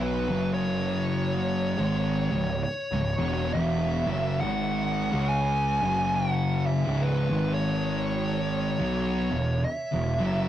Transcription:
0.00 0.27 B1 medium
0.00 0.27 B2 medium
0.00 0.28 F#3 medium
0.00 0.28 B3 medium
0.00 0.51 B4 medium
0.27 1.75 F#1 medium
0.27 1.76 F#2 medium
0.27 1.77 C#3 medium
0.27 1.77 F#3 medium
0.54 2.62 C#5 loud
1.77 2.27 G#1 medium
1.77 2.28 G#2 medium
1.77 2.29 D#3 loud
1.77 2.29 G#3 loud
2.31 2.64 C#1 medium
2.31 2.59 C#2 medium
2.31 2.60 G#2 medium
2.64 3.55 C#5 loud
2.92 3.16 C#1 medium
2.92 3.18 C#2 medium
2.92 3.19 G#2 medium
3.17 3.51 E1 loud
3.17 3.53 E2 medium
3.17 3.53 B2 loud
3.17 3.54 E3 loud
3.53 4.02 E1 medium
3.53 4.05 E2 loud
3.53 4.05 B2 loud
3.53 4.06 E3 loud
3.53 4.40 E5 loud
4.06 4.39 F#1 medium
4.06 4.41 F#2 loud
4.06 4.41 C#3 loud
4.06 4.42 F#3 loud
4.40 5.08 G#1 medium
4.40 5.11 G#2 medium
4.40 5.11 D#3 medium
4.40 5.10 G#3 loud
4.40 5.32 F#5 loud
5.11 5.78 C#2 medium
5.11 5.80 C#3 medium
5.11 5.80 G#3 medium
5.11 5.80 C#4 loud
5.28 6.13 G#5 medium
5.81 6.83 F#1 loud
5.81 6.85 F#2 medium
5.81 6.86 C#3 medium
5.81 6.86 F#3 loud
6.15 6.33 G5 medium
6.33 6.65 F#5 medium
6.66 7.04 E5 loud
6.85 7.28 C#1 medium
6.85 7.28 C#2 medium
6.85 7.29 G#2 medium
6.85 7.29 C#3 medium
7.02 7.54 B4 medium
7.30 8.76 G#1 medium
7.30 8.78 G#2 medium
7.30 8.79 D#3 medium
7.30 8.79 G#3 loud
7.54 9.72 C#5 medium
8.79 9.28 B1 medium
8.79 9.29 B2 medium
8.79 9.30 F#3 medium
8.79 9.30 B3 loud
9.30 9.64 E1 medium
9.30 9.59 E2 medium
9.30 9.60 B2 medium
9.64 10.48 E5 medium
9.92 10.17 E1 medium
9.92 10.18 E2 medium
9.92 10.18 B2 medium
10.18 10.48 F#1 loud
10.18 10.48 F#2 medium
10.18 10.48 C#3 loud
10.18 10.48 F#3 loud

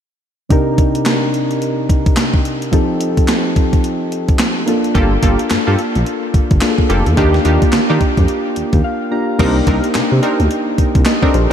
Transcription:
0.49 2.68 C3 medium
0.49 2.69 D4 medium
0.49 2.69 D#4 medium
0.49 2.69 G4 medium
0.49 2.70 A#4 medium
0.49 kick loud
0.49 closed hi-hat medium
0.78 kick loud
0.78 closed hi-hat medium
0.95 closed hi-hat medium
1.05 snare loud
1.05 clap medium
1.05 closed hi-hat medium
1.34 closed hi-hat medium
1.51 closed hi-hat soft
1.62 closed hi-hat medium
1.89 kick medium
1.89 closed hi-hat medium
2.06 kick loud
2.06 closed hi-hat soft
2.16 snare loud
2.16 clap medium
2.16 closed hi-hat medium
2.34 kick medium
2.45 closed hi-hat medium
2.62 closed hi-hat medium
2.72 4.63 F3 medium
2.72 4.63 C4 medium
2.72 4.63 D#4 medium
2.72 4.64 G4 medium
2.72 4.64 A4 medium
2.72 kick loud
2.72 closed hi-hat medium
3.01 closed hi-hat medium
3.17 kick medium
3.17 closed hi-hat medium
3.28 snare loud
3.28 clap medium
3.28 closed hi-hat medium
3.56 kick medium
3.56 closed hi-hat medium
3.73 kick medium
3.73 closed hi-hat soft
3.84 closed hi-hat medium
4.12 closed hi-hat medium
4.28 kick medium
4.28 closed hi-hat soft
4.39 snare loud
4.39 clap medium
4.39 closed hi-hat medium
4.66 6.57 A#3 medium
4.66 6.58 D4 medium
4.66 6.58 F4 medium
4.66 6.59 A4 medium
4.66 closed hi-hat medium
4.84 closed hi-hat medium
4.95 5.17 G1 loud
4.95 5.12 A#3 loud
4.95 5.12 F4 medium
4.95 5.13 G4 medium
4.95 5.13 A4 loud
4.95 kick loud
4.95 closed hi-hat medium
5.22 5.36 G1 medium
5.22 5.40 A#3 medium
5.22 5.40 F4 medium
5.22 5.40 G4 medium
5.22 5.40 A4 medium
5.22 kick medium
5.22 closed hi-hat medium
5.39 closed hi-hat medium
5.50 5.57 G2 soft
5.50 snare loud
5.50 clap medium
5.50 closed hi-hat medium
5.67 5.76 G2 medium
5.67 5.79 A#3 medium
5.67 5.79 F4 medium
5.67 5.80 G4 medium
5.67 5.80 A4 medium
5.79 closed hi-hat medium
5.95 6.04 A#1 medium
5.95 closed hi-hat soft
6.06 closed hi-hat medium
6.34 6.41 G1 soft
6.34 kick medium
6.34 closed hi-hat medium
6.51 6.60 G1 medium
6.51 kick loud
6.51 closed hi-hat soft
6.61 7.15 A#3 medium
6.61 7.16 D4 soft
6.61 7.17 F4 medium
6.61 6.70 G#4 soft
6.61 snare loud
6.61 clap loud
6.61 closed hi-hat medium
6.69 7.21 A4 medium
6.78 kick medium
6.89 7.03 F1 loud
6.89 7.07 A#3 medium
6.89 7.07 F4 medium
6.89 7.07 G4 medium
6.89 7.07 A4 medium
6.89 closed hi-hat medium
7.06 7.15 E2 medium
7.06 closed hi-hat medium
7.16 7.39 D#2 loud
7.16 9.07 A#3 medium
7.16 9.08 D4 medium
7.16 7.35 D4 medium
7.16 7.35 D#4 medium
7.16 7.35 F4 medium
7.16 9.08 F4 medium
7.16 7.35 G4 loud
7.16 9.08 G4 medium
7.16 kick loud
7.16 closed hi-hat medium
7.34 snare medium
7.45 7.58 D#2 loud
7.45 7.62 D4 medium
7.45 7.63 D#4 medium
7.45 7.63 F4 medium
7.45 7.63 G4 medium
7.45 closed hi-hat medium
7.62 kick loud
7.62 closed hi-hat medium
7.72 7.80 D#3 soft
7.72 snare loud
7.72 clap medium
7.72 closed hi-hat medium
7.89 7.98 D#3 loud
7.89 8.02 D4 medium
7.89 8.02 D#4 medium
7.89 8.02 F4 medium
7.89 8.02 G4 medium
8.01 kick medium
8.01 closed hi-hat medium
8.17 8.26 F2 medium
8.17 kick medium
8.17 closed hi-hat soft
8.28 closed hi-hat medium
8.56 8.63 D#2 soft
8.56 closed hi-hat medium
8.73 8.82 D#2 medium
8.73 kick loud
8.73 closed hi-hat soft
8.84 9.10 F5 medium
9.11 9.37 A#3 soft
9.11 9.38 D4 soft
9.11 9.40 F4 soft
9.11 9.40 G4 medium
9.11 9.37 A#5 medium
9.38 9.61 C2 loud
9.38 11.02 A#3 medium
9.38 9.57 C4 medium
9.38 11.03 D4 medium
9.38 9.57 D4 medium
9.38 9.57 D#4 medium
9.38 11.03 D#4 medium
9.38 11.03 G4 medium
9.38 9.57 A#4 loud
9.38 kick loud
9.38 closed hi-hat medium
9.38 crash medium
9.67 9.80 C2 loud
9.67 9.85 C4 medium
9.67 9.85 D4 medium
9.67 9.85 D#4 medium
9.67 9.85 A#4 medium
9.67 kick medium
9.67 closed hi-hat medium
9.84 closed hi-hat medium
9.94 10.02 C3 soft
9.94 snare loud
9.94 clap medium
9.94 closed hi-hat medium
10.12 10.20 C3 loud
10.22 10.40 C4 medium
10.22 10.40 D4 medium
10.22 10.40 D#4 medium
10.22 10.40 A#4 medium
10.22 closed hi-hat medium
10.40 10.48 D2 medium
10.40 closed hi-hat medium
10.51 closed hi-hat medium
10.78 10.85 C2 medium
10.78 kick medium
10.78 closed hi-hat medium
10.95 11.04 C2 medium
10.95 kick loud
10.95 closed hi-hat soft
11.05 11.22 A#4 medium
11.05 11.22 D#5 medium
11.05 snare loud
11.05 clap medium
11.05 closed hi-hat medium
11.22 11.35 C4 medium
11.22 11.35 D4 medium
11.22 11.35 D#4 medium
11.22 11.34 A4 medium
11.22 11.35 A#4 medium
11.22 11.33 D5 medium
11.22 kick medium
11.34 11.47 A#1 medium
11.34 11.50 G4 medium
11.34 11.50 C5 medium
11.34 closed hi-hat medium

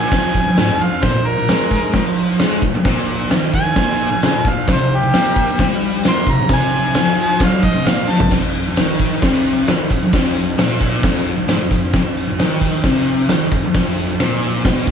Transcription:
0.00 0.12 A#2 medium
0.00 0.57 G#5 loud
0.12 0.45 F2 loud
0.12 kick loud
0.12 snare loud
0.12 crash medium
0.35 kick medium
0.47 muted distorted electric guitar stroke medium
0.57 0.68 G#2 loud
0.57 0.85 G#5 medium
0.57 snare loud
0.57 tambourine loud
0.57 crash medium
0.71 0.80 F2 medium
0.82 0.99 F2 medium
0.82 1.05 F5 medium
1.03 1.13 A#2 loud
1.03 1.28 C5 loud
1.03 kick loud
1.03 snare loud
1.03 crash medium
1.15 1.33 A#2 medium
1.27 2.15 A#4 loud
1.38 1.49 A#2 medium
1.48 1.94 G#3 loud
1.48 snare loud
1.48 tambourine medium
1.48 crash medium
1.71 kick medium
1.93 2.39 F3 loud
1.93 kick loud
1.93 snare loud
1.93 crash medium
2.39 2.62 G#3 loud
2.39 snare loud
2.39 tambourine loud
2.39 crash medium
2.62 2.73 A#2 medium
2.62 kick medium
2.75 muted distorted electric guitar stroke medium
2.85 3.30 A#2 loud
2.85 kick loud
2.85 snare loud
2.85 crash medium
3.31 3.75 D#3 loud
3.31 snare loud
3.31 tambourine medium
3.31 crash medium
3.54 4.21 G#5 loud
3.54 kick medium
3.76 4.10 A#2 loud
3.76 kick loud
3.76 snare loud
3.76 crash medium
4.12 muted distorted electric guitar stroke medium
4.22 4.33 C#3 loud
4.22 4.51 G#5 medium
4.22 snare loud
4.22 tambourine medium
4.22 crash medium
4.35 4.45 A#2 medium
4.45 4.64 A#2 medium
4.45 kick medium
4.50 4.69 F5 medium
4.68 4.79 C3 loud
4.68 kick loud
4.68 snare loud
4.68 crash medium
4.72 4.97 C5 loud
4.81 4.98 C3 medium
4.95 5.81 G4 loud
5.03 5.14 C3 medium
5.13 5.59 A#3 loud
5.13 snare loud
5.13 tambourine medium
5.13 crash medium
5.36 kick medium
5.59 6.04 G3 loud
5.59 kick loud
5.59 snare loud
5.59 crash medium
6.04 6.27 A#3 loud
6.04 snare loud
6.04 tambourine loud
6.04 crash medium
6.09 6.33 C6 loud
6.27 6.39 C3 medium
6.27 kick medium
6.32 6.52 A#5 medium
6.41 muted distorted electric guitar stroke medium
6.49 6.96 C3 loud
6.49 kick loud
6.49 snare loud
6.49 crash medium
6.53 7.40 G#5 loud
6.94 7.40 F3 loud
6.94 snare loud
6.94 tambourine loud
6.94 crash medium
7.40 7.63 F#3 loud
7.40 7.67 F5 loud
7.40 kick loud
7.40 snare loud
7.40 crash medium
7.63 7.75 F3 loud
7.63 7.89 D#5 loud
7.63 kick medium
7.76 7.86 C3 loud
7.86 8.08 A#2 loud
7.86 8.12 F5 loud
7.86 snare loud
7.86 tambourine loud
7.86 crash medium
8.09 8.31 F3 loud
8.09 8.32 A5 loud
8.09 snare medium
8.20 floor tom medium
8.31 8.42 F2 loud
8.31 kick loud
8.31 snare loud
8.31 crash loud
8.31 tambourine soft
8.31 crash medium
8.44 8.62 F2 medium
8.54 tambourine medium
8.65 8.78 F2 medium
8.65 tambourine soft
8.76 9.23 D#3 loud
8.76 snare loud
8.76 tambourine medium
8.76 crash medium
9.00 kick medium
9.11 tambourine soft
9.22 9.67 C3 loud
9.22 kick loud
9.22 snare loud
9.22 crash medium
9.34 tambourine medium
9.56 tambourine soft
9.67 9.90 D#3 loud
9.67 snare loud
9.67 tambourine loud
9.67 crash medium
9.90 10.01 F2 medium
9.90 kick medium
9.90 tambourine medium
10.02 muted distorted electric guitar stroke medium
10.02 tambourine soft
10.13 10.58 F2 loud
10.13 kick loud
10.13 snare loud
10.13 tambourine soft
10.13 crash medium
10.35 tambourine medium
10.47 tambourine soft
10.58 11.03 A#2 loud
10.58 snare loud
10.58 tambourine loud
10.58 crash medium
10.81 kick medium
10.81 tambourine medium
10.93 tambourine soft
11.03 11.37 F2 loud
11.03 kick loud
11.03 snare loud
11.03 crash medium
11.16 tambourine medium
11.38 muted distorted electric guitar stroke medium
11.38 tambourine soft
11.48 11.59 G#2 loud
11.48 snare loud
11.48 tambourine loud
11.48 crash medium
11.59 11.70 F2 medium
11.71 11.89 F2 medium
11.71 kick medium
11.71 tambourine medium
11.83 tambourine soft
11.93 12.03 F2 loud
11.93 kick loud
11.93 snare loud
11.93 tambourine soft
11.93 crash medium
12.05 12.23 F2 medium
12.17 tambourine medium
12.28 12.39 F2 medium
12.28 tambourine soft
12.39 12.83 D#3 loud
12.39 snare loud
12.39 tambourine loud
12.39 crash medium
12.61 kick medium
12.61 tambourine medium
12.74 tambourine soft
12.83 13.28 C3 loud
12.83 kick loud
12.83 snare loud
12.83 crash medium
12.96 tambourine medium
13.19 tambourine soft
13.29 13.51 D#3 loud
13.29 snare loud
13.29 tambourine loud
13.29 crash medium
13.52 13.62 F2 medium
13.52 kick medium
13.52 tambourine medium
13.63 muted distorted electric guitar stroke medium
13.74 14.19 F2 loud
13.74 kick loud
13.74 snare loud
13.74 crash medium
13.87 tambourine soft
13.98 tambourine medium
14.09 tambourine soft
14.20 14.64 A#2 loud
14.20 snare loud
14.20 tambourine loud
14.20 crash medium
14.32 tambourine soft
14.42 tambourine medium
14.65 14.87 B2 loud
14.65 kick loud
14.65 snare loud
14.65 tambourine soft
14.65 crash medium
14.76 tambourine medium
14.87 kick medium

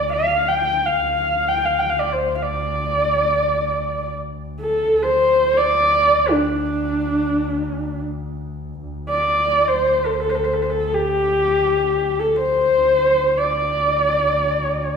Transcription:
0.00 0.99 D2 medium
0.13 0.50 F5 medium
0.49 0.87 G5 medium
0.86 1.51 F5 medium
1.00 4.91 D2 medium
1.49 1.67 G5 medium
1.66 1.81 F5 medium
1.79 1.92 G5 medium
1.90 2.01 F5 medium
2.00 2.14 D5 medium
2.13 2.36 C5 medium
2.37 2.44 F5 medium
2.43 4.13 D5 medium
4.60 5.05 A4 medium
4.91 8.82 D2 medium
5.03 5.59 C5 medium
5.57 6.34 D5 loud
6.32 8.02 D4 medium
8.82 12.75 D2 medium
9.10 9.70 D5 medium
9.68 10.07 C5 medium
10.06 10.15 A4 medium
10.14 10.22 C5 medium
10.21 10.31 A4 medium
10.30 10.37 C5 medium
10.36 10.46 A4 medium
10.44 10.55 C5 medium
10.54 10.64 A4 medium
10.62 10.72 C5 medium
10.70 10.96 A4 medium
10.94 12.21 G4 medium
12.20 12.38 A4 medium
12.37 13.40 C5 medium
12.75 14.97 D2 medium
13.38 14.97 D5 medium

